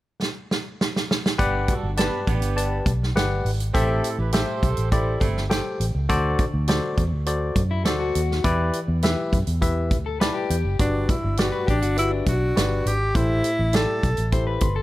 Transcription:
0.22 snare
0.51 snare
0.81 snare
0.96 snare
1.11 snare
1.26 snare
1.38 fingered electric bass G1, tine electric piano G2 G4 B4 D5 F#5, horn section B3 D4 G4, kick, closed hi-hat
1.67 horn section D4 F#4 A4, kick, closed hi-hat
1.83 fingered electric bass G1
1.97 horn section B3 G4 B4, tine electric piano G4 B4 D5 A5, snare, closed hi-hat
2.27 fingered electric bass A1, horn section B3 D4 G4, kick, closed hi-hat
2.42 fingered electric bass G1, closed hi-hat
2.56 tine electric piano G4 B4 D5 A5, closed hi-hat
2.86 fingered electric bass B1, kick, closed hi-hat
3.03 snare
3.15 fingered electric bass G1, tine electric piano G4 B4 D5 F#5, snare, closed hi-hat
3.45 fingered electric bass G#1, open hi-hat
3.60 closed hi-hat
3.74 fingered electric bass A1, tine electric piano A2 G4 A4 C5 E5, horn section C4 E4 A4, kick, closed hi-hat
4.04 closed hi-hat
4.18 fingered electric bass A1, horn section E4 G4 B4
4.32 horn section G4 A4 C5, tine electric piano G4 A4 C5 E5, snare, closed hi-hat
4.63 fingered electric bass B1, kick, closed hi-hat
4.77 fingered electric bass A1, closed hi-hat
4.91 horn section C4 E4 A4, tine electric piano G4 A4 C5 D5, kick, closed hi-hat
5.20 fingered electric bass G1, horn section A3 C4 E4, kick, closed hi-hat
5.37 snare
5.50 tine electric piano G4 A4 C5 G5, snare, closed hi-hat
5.80 fingered electric bass A1, closed hi-hat
5.95 fingered electric bass C#2
6.09 fingered electric bass D2, tine electric piano D3 F#4 A4 C5 D5, kick, closed hi-hat
6.39 kick, closed hi-hat
6.54 fingered electric bass D2
6.68 tine electric piano F#4 A4 C5 D5, snare, closed hi-hat
6.98 fingered electric bass E2, kick, closed hi-hat
7.13 fingered electric bass D2
7.26 tine electric piano F#4 A4 C5 D5, closed hi-hat
7.56 fingered electric bass F#2, kick, closed hi-hat
7.71 clean electric guitar E4
7.85 fingered electric bass D2, tine electric piano F#4 A4 C5 D5, clean electric guitar A4, snare, closed hi-hat
8.00 clean electric guitar F#4
8.15 fingered electric bass D#2, closed hi-hat
8.31 snare
8.44 fingered electric bass E2, tine electric piano E3 E4 G4 B4 D5, kick, closed hi-hat
8.73 closed hi-hat
8.88 fingered electric bass E2
9.03 tine electric piano E4 G4 B4 E5, snare, closed hi-hat
9.32 fingered electric bass F#2, kick, closed hi-hat
9.47 fingered electric bass E2, closed hi-hat
9.61 tine electric piano E4 G4 B4 E5, kick, closed hi-hat
9.91 fingered electric bass D2, kick, closed hi-hat
10.06 clean electric guitar A4
10.20 tine electric piano E4 G4 B4 D5 A5, clean electric guitar B4, snare, closed hi-hat
10.34 clean electric guitar G4
10.50 fingered electric bass E2, tine electric piano G5, closed hi-hat
10.65 fingered electric bass F#1
10.79 fingered electric bass G1, tine electric piano G2 F#4 G4 B4 D5, tenor saxophone D4, kick, closed hi-hat
11.09 tenor saxophone E4, kick, closed hi-hat
11.24 fingered electric bass G1
11.37 tine electric piano F#4 G4 B4 D5, tenor saxophone F#4, snare, closed hi-hat
11.52 clean electric guitar B4
11.67 fingered electric bass A1, tenor saxophone D4, clean electric guitar G4, kick, closed hi-hat
11.82 fingered electric bass G1, clean electric guitar F#4, closed hi-hat
11.97 tenor saxophone E4, tine electric piano F#4 G4 B4 E5, closed hi-hat
12.11 clean electric guitar D4
12.26 fingered electric bass B1, tenor saxophone F#4, kick, closed hi-hat
12.56 fingered electric bass G1, tine electric piano F#4 G4 B4 D5, snare, closed hi-hat
12.86 fingered electric bass G#1, tenor saxophone G4, closed hi-hat
13.15 fingered electric bass A1, tine electric piano A2 E4 G4 A4 C5, tenor saxophone E4, kick, closed hi-hat
13.44 closed hi-hat
13.59 fingered electric bass A1
13.73 tine electric piano E4 G4 A4 D5, tenor saxophone A4, snare, closed hi-hat
14.03 fingered electric bass B1, kick, closed hi-hat
14.17 fingered electric bass A1, closed hi-hat
14.32 tine electric piano E4 G4 A4 C5, clean electric guitar C5, kick, closed hi-hat
14.47 clean electric guitar B4
14.61 fingered electric bass G1, tine electric piano C6, kick, closed hi-hat
14.76 clean electric guitar A4

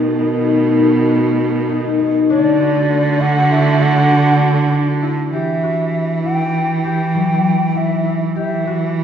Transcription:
Already playing: cello B2, string section D#3 A3 B3, harp D#4 F#4
0.19 harp D#4
0.48 harp D#4
0.79 harp D#4
1.09 harp F#4
1.69 harp D#4
1.99 harp D#4
2.29 string section D3 A3 F#4, cello D3, harp D4, flute D5
2.60 harp F#4
3.20 harp D4, flute F#5
3.51 harp E4, flute E5
3.81 harp D4, flute F#5
4.11 harp F#4
4.72 harp D4
5.02 harp E4
5.33 cello E3, harp G4, flute E5
5.63 harp F#4
6.23 harp E4, flute G5
6.54 harp E4
6.84 harp G4, flute G5
7.14 harp F#3
7.75 harp E4, flute E5
8.06 harp E4
8.36 cello E3, harp G4, flute E5
8.67 harp F#4

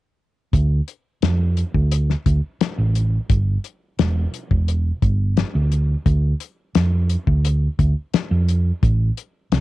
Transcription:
0.53 fingered electric bass D2, kick, closed hi-hat
0.88 closed hi-hat
1.22 fingered electric bass F2, snare, closed hi-hat
1.57 closed hi-hat
1.74 fingered electric bass D2, kick
1.92 closed hi-hat
2.10 snare
2.26 fingered electric bass D2, kick, closed hi-hat
2.61 muted fingered electric bass stroke, snare, closed hi-hat
2.78 fingered electric bass A1
2.95 closed hi-hat
3.30 fingered electric bass G1, kick, closed hi-hat
3.64 closed hi-hat
3.99 fingered electric bass E1, snare, closed hi-hat
4.34 closed hi-hat
4.51 fingered electric bass E1, kick
4.68 closed hi-hat
5.02 fingered electric bass G1, kick, closed hi-hat
5.37 snare, closed hi-hat
5.55 fingered electric bass D2
5.72 closed hi-hat
6.06 fingered electric bass D2, kick, closed hi-hat
6.40 closed hi-hat
6.75 fingered electric bass F2, snare, closed hi-hat
7.10 closed hi-hat
7.27 fingered electric bass D2, kick
7.45 closed hi-hat
7.79 fingered electric bass D2, kick, closed hi-hat
8.14 muted fingered electric bass stroke, snare, closed hi-hat
8.31 fingered electric bass F2
8.48 closed hi-hat
8.83 fingered electric bass A1, kick, closed hi-hat
9.17 closed hi-hat
9.52 fingered electric bass C2, snare, closed hi-hat

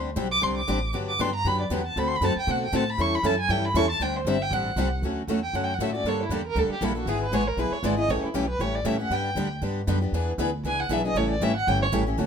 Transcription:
Already playing: upright bass D2
0.16 upright bass B1, steel-string acoustic guitar D3 G3 C4 D4 G4
0.32 violin D6
0.41 upright bass C2, steel-string acoustic guitar D3 G3 C4 D4 G4, violin C6
0.58 violin D6
0.68 upright bass A1, steel-string acoustic guitar D3 G3 C4 D4 G4
0.94 upright bass G1, steel-string acoustic guitar D3 F#3 B3 D4 G4
1.09 violin D6
1.19 upright bass G2, steel-string acoustic guitar D3 F#3 B3 D4 G4, violin C6
1.35 violin A#5
1.44 upright bass F#2, steel-string acoustic guitar D3 F#3 B3 D4 G4, violin B5
1.61 violin D5
1.70 upright bass E2, steel-string acoustic guitar D3 F#3 B3 D4 G4, violin F#5
1.87 violin A5
1.96 upright bass D2, steel-string acoustic guitar D3 A3 C4 F#4 A4, violin B5
2.08 violin C6
2.16 violin B5
2.21 upright bass F#2, steel-string acoustic guitar D3 A3 C4 F#4 A4, violin A5
2.36 violin G5, muted upright bass stroke
2.47 upright bass B2, steel-string acoustic guitar D3 A3 C4 F#4 A4, violin F#5
2.65 violin G5
2.73 upright bass A2, steel-string acoustic guitar D3 A3 C4 F#4 A4, violin A5
2.90 violin B5
2.98 upright bass E2, steel-string acoustic guitar E3 G3 C#4 E4 A4, violin C#6
3.15 violin B5
3.23 upright bass F#2, steel-string acoustic guitar E3 G3 C#4 E4 A4, violin A5
3.40 violin G#5
3.49 upright bass G2, steel-string acoustic guitar E3 G3 C#4 E4 A4, violin G5
3.65 violin B5
3.74 upright bass E2, steel-string acoustic guitar E3 G3 C#4 E4 A4, violin C#6
3.90 violin A5
4.00 upright bass D2, steel-string acoustic guitar D3 G3 C4 D4 G4, violin G5
4.17 violin C5
4.25 upright bass G1, steel-string acoustic guitar D3 G3 C4 D4 G4, violin E5
4.42 violin G5
4.51 upright bass A1, steel-string acoustic guitar D3 G3 C4 D4 G4, violin F#5
4.76 upright bass C2, steel-string acoustic guitar D3 G3 C4 D4 G4
5.02 upright bass D2, steel-string acoustic guitar D3 F#3 A3 C#4 F#4 A4
5.27 upright bass E2, steel-string acoustic guitar D3 F#3 A3 C#4 F#4 A4
5.43 violin G5
5.53 upright bass F#2, steel-string acoustic guitar D3 F#3 A3 C#4 F#4 A4, violin F#5
5.64 violin G5
5.74 violin F#5
5.79 upright bass A2, steel-string acoustic guitar D3 F#3 A3 C#4 F#4 A4, violin E5
5.94 steel-string acoustic guitar A3 C#4 F#4, violin D5
6.04 upright bass G2, steel-string acoustic guitar D3 G3 A#3 D4 A4
6.08 violin C#5
6.23 violin E4
6.29 upright bass E2, steel-string acoustic guitar D3 G3 A#3 D4 A4, violin G4
6.47 violin A#4
6.56 upright bass D2, steel-string acoustic guitar D3 G3 A#3 D4 A4, violin A4
6.69 violin G4, muted upright bass stroke
6.81 upright bass A#1, steel-string acoustic guitar D3 G3 A#3 D4 A4, violin E4
6.95 steel-string acoustic guitar A#3 D4 A4, violin F#4
7.06 upright bass G#1, steel-string acoustic guitar D3 G#3 B3 E4 G#4
7.10 violin G#4
7.23 violin B4
7.32 upright bass A1, steel-string acoustic guitar D3 G#3 B3 E4 G#4, violin C#5
7.48 violin A#4
7.57 upright bass B1, steel-string acoustic guitar D3 G#3 B3 E4 G#4, violin B4
7.71 violin C#5, muted upright bass stroke
7.83 upright bass G#1, steel-string acoustic guitar D3 G#3 B3 E4 G#4, violin D5
7.97 steel-string acoustic guitar B3 E4 G#4, violin D#5
8.08 upright bass A1, steel-string acoustic guitar C#3 E3 G3 A3 C#4 E4 G4 A4, violin C#5
8.23 violin E4, muted upright bass stroke
8.34 upright bass B1, steel-string acoustic guitar C#3 E3 G3 A3 C#4 E4 G4 A4, violin G4
8.49 violin B4
8.59 upright bass A1, steel-string acoustic guitar C#3 E3 G3 A3 C#4 E4 G4 A4, violin C#5
8.75 violin D5
8.84 upright bass A2, steel-string acoustic guitar C#3 E3 G3 A3 C#4 E4 G4 A4, violin E5
9.00 steel-string acoustic guitar A3 C#4, violin F#5
9.10 upright bass G2, steel-string acoustic guitar D3 G3 B3 D4 G4, violin G5
9.35 upright bass D2, steel-string acoustic guitar D3 G3 B3 D4 G4
9.62 upright bass G2, steel-string acoustic guitar D3 G3 B3 D4 G4
9.87 upright bass F#2, steel-string acoustic guitar D3 G3 B3 D4 G4
10.01 steel-string acoustic guitar B3 D4 G4
10.12 upright bass E2, steel-string acoustic guitar E3 B3 D4 G#4 B4
10.38 upright bass D2, steel-string acoustic guitar E3 B3 D4 G#4 B4
10.63 upright bass C#2, steel-string acoustic guitar E3 B3 D4 G#4 B4
10.67 violin G#5
10.80 violin F#5
10.89 upright bass B1, steel-string acoustic guitar E3 B3 D4 G#4 B4, violin E5
11.05 steel-string acoustic guitar B3 D4 G#4, violin D#5
11.15 upright bass A1, steel-string acoustic guitar C#3 E3 G3 A3 C#4 E4 G4 A4, violin C#5
11.31 violin D5
11.40 upright bass G#1, steel-string acoustic guitar C#3 E3 G3 A3 C#4 E4 G4 A4, violin E5
11.56 violin F#5
11.67 upright bass G1, steel-string acoustic guitar C#3 E3 G3 A3 C#4 E4 G4 A4, violin G5
11.82 violin C#5
11.92 upright bass A1, steel-string acoustic guitar C#3 E3 G3 A3 C#4 E4 G4 A4
12.07 steel-string acoustic guitar A3 C#4 G4
12.18 upright bass D2, steel-string acoustic guitar D3 F#3 A3 C#4 F#4 A4

